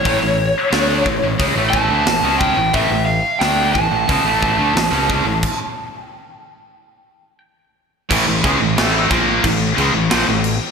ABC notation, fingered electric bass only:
X:1
M:4/4
L:1/16
Q:1/4=90
K:none
V:1 name="Fingered electric bass" clef=bass
A,,, A,,,2 z D,,2 A,,, A,,, ^C,, A,,,2 D,, A,,, C,,2 A,,, | A,,, A,,,2 z D,,2 A,,, A,,, ^C,, A,,,2 D,, A,,, C,,2 A,,, | z16 | A,,, A,,, ^C,, A,,, A,,,2 _B,,,2 A,,,2 C,, A,,, B,,, A,,,2 z |]